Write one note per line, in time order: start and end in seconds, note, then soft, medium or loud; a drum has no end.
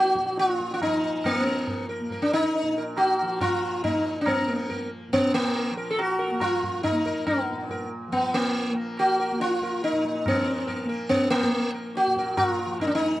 0.00 0.17 A#2 medium
0.00 0.80 F3 medium
0.00 1.40 A#3 medium
0.00 0.39 F#4 medium
0.05 tabla te medium
0.15 2.62 A#2 medium
0.15 tabla ke medium
0.26 tabla te medium
0.37 0.73 F4 medium
0.37 tabla te medium
0.49 tabla te medium
0.60 tabla ke medium
0.71 0.81 F4 medium
0.71 tabla te soft
0.81 3.22 F3 medium
0.81 1.26 D#4 medium
0.81 tabla na medium
0.81 tabla ge medium
1.04 tabla ge soft
1.24 1.41 A#3 medium
1.24 tabla na loud
1.24 tabla ge medium
1.40 2.00 A#3 medium
1.40 1.86 B3 medium
1.46 1.66 A#4 soft
1.67 tabla tin medium
1.67 tabla ge medium
1.89 2.09 A#4 soft
2.00 3.85 A#3 soft
2.10 2.32 A#4 soft
2.10 tabla tin medium
2.10 tabla ge medium
2.22 2.33 D4 medium
2.32 2.83 D#4 medium
2.32 tabla na medium
2.43 tabla ke medium
2.54 tabla tin medium
2.63 5.08 A#2 medium
2.78 2.97 A#4 soft
2.97 3.41 F#4 medium
2.97 tabla na medium
3.19 5.70 F3 medium
3.19 tabla na medium
3.41 3.83 F4 medium
3.41 tabla na medium
3.41 tabla ge medium
3.84 4.48 A#3 medium
3.84 4.21 D#4 medium
3.84 tabla na medium
3.84 tabla ge medium
4.06 tabla te medium
4.21 4.27 D4 medium
4.26 4.87 B3 medium
4.26 tabla na loud
4.26 tabla ge medium
4.48 6.31 A#3 medium
4.48 4.68 A#4 soft
4.70 4.89 A#4 soft
4.70 tabla tin medium
4.70 tabla ge medium
5.08 7.49 A#2 medium
5.13 5.34 B3 medium
5.13 tabla tin medium
5.13 tabla ge medium
5.34 5.74 A#3 medium
5.34 tabla na soft
5.55 5.75 A#4 soft
5.55 tabla tin medium
5.71 8.07 F3 medium
5.77 5.97 A#4 soft
5.91 5.98 A4 medium
5.99 6.43 F#4 medium
5.99 tabla na medium
6.19 6.39 A#4 soft
6.31 6.91 A#3 medium
6.40 6.83 F4 medium
6.40 tabla na medium
6.40 tabla ge medium
6.63 tabla ge medium
6.83 7.26 D#4 medium
6.83 tabla na medium
6.83 tabla ge medium
6.91 8.72 A#3 medium
7.05 7.25 A#4 soft
7.05 tabla ge soft
7.27 7.87 B3 medium
7.27 tabla na loud
7.27 tabla ge medium
7.49 9.92 A#2 medium
7.70 7.90 A#4 soft
7.70 tabla tin medium
7.70 tabla ge medium
8.08 10.25 F3 medium
8.12 8.34 B3 medium
8.12 tabla tin medium
8.12 tabla ge medium
8.33 8.74 A#3 medium
8.33 tabla na medium
8.55 tabla tin medium
8.72 9.32 A#3 medium
8.76 tabla na medium
8.97 9.41 F#4 medium
8.97 9.18 A#4 soft
8.97 tabla na medium
9.20 9.39 A#4 soft
9.32 10.85 A#3 medium
9.40 9.83 F4 medium
9.40 tabla te medium
9.51 tabla te medium
9.62 9.82 A#4 soft
9.62 tabla ke medium
9.72 tabla te soft
9.83 10.27 D#4 medium
9.83 10.03 A#4 soft
9.83 tabla te medium
9.92 12.06 A#2 medium
9.92 tabla te medium
10.05 tabla ke soft
10.15 tabla te medium
10.25 12.65 F3 medium
10.25 10.87 B3 medium
10.25 tabla na medium
10.25 tabla ge medium
10.46 10.66 A#4 soft
10.68 10.88 A#4 soft
10.68 tabla tin medium
10.68 tabla ge medium
10.85 11.45 A#3 medium
10.89 11.09 A#4 soft
11.09 11.30 B3 medium
11.09 tabla tin medium
11.09 tabla ge medium
11.30 11.71 A#3 medium
11.30 tabla na medium
11.43 13.20 A#3 medium
11.43 tabla ke medium
11.53 tabla tin medium
11.74 11.94 A#4 soft
11.95 12.37 F#4 medium
11.95 tabla te medium
12.06 13.20 A#2 medium
12.06 tabla te medium
12.16 12.38 A#4 soft
12.16 tabla ke medium
12.27 tabla te medium
12.37 12.48 F#4 medium
12.37 tabla na medium
12.37 tabla ge medium
12.48 12.77 F4 medium
12.59 12.79 A#4 soft
12.59 tabla te medium
12.66 13.20 F3 medium
12.80 12.87 D#4 medium
12.80 tabla na medium
12.80 tabla ge medium
12.87 12.94 D4 medium
12.95 13.20 D#4 medium
13.02 tabla ge soft